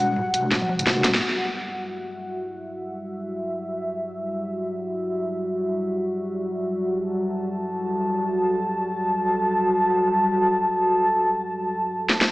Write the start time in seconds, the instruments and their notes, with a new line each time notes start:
Already playing: wobble bass E1, ambient pad G3 F#4 F#5
0.16 mid tom
0.34 wobble bass E1, closed hi-hat
0.51 snare, mid tom
0.62 high tom
0.69 high tom
0.79 closed hi-hat, mid tom
0.87 wobble bass E1, snare
0.97 mid tom
1.04 snare, closed hi-hat
1.14 snare, mid tom
1.22 ambient pad G3 F#4 E5
6.83 ambient pad A5
12.09 snare
12.21 snare